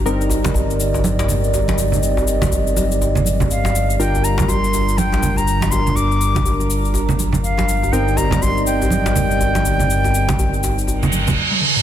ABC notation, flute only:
X:1
M:4/4
L:1/16
Q:"Swing 16ths" 1/4=122
K:Cdor
V:1 name="Flute"
z16 | z12 f4 | g2 b2 c'4 g3 b3 c'2 | d'6 z6 f4 |
g2 b2 c'2 g8- g2- | g12 z4 |]